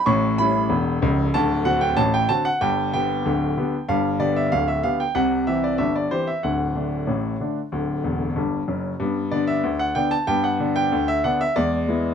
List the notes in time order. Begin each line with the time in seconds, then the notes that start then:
0.06 A1 A2 C#6
0.38 G3 C#4 E4 B5
0.69 E1 E2
1.02 C#1 C#2
1.34 D1 D2 A5
1.65 D3 C4 F#4 F#5
1.81 G5
1.97 A1 A2 A5
2.14 G5
2.29 D3 C4 F#4 A5
2.45 F#5
2.61 G1 G2 G5
2.94 D3 B3 G4 G5
3.26 D1 D2
3.57 D3 B3 G4
3.89 G1 G2 F5
4.19 D3 B3 G4 D5
4.36 E5
4.52 D1 D2 F5
4.68 E5
4.83 D3 B3 G4 F5
5.00 G5
5.15 C2 C3 F#5
5.47 E3 C4 G4 E5
5.64 D5
5.78 G1 G2 E5
5.96 D5
6.11 E3 C4 G4 C5
6.27 E5
6.43 D1 D2 F#5
6.74 D3 A3 D4
7.07 A1 A2
7.40 D3 A3 D4
7.72 D1 D2
8.04 E1 E2
8.36 G1 G2
8.68 F#1 F#2
9.00 G2 B3
9.31 D3 B3 D4 D5
9.47 E5
9.63 D2
9.79 F#5
9.95 D3 B3 D4 G5
10.11 A5
10.27 G2 B3 G5
10.44 F#5
10.60 D3 B3 D4
10.76 G5
10.92 D2
11.08 E5
11.24 D3 B3 D4 F#5
11.41 E5
11.56 E2 G#3 D5
11.88 G#3 B3 E4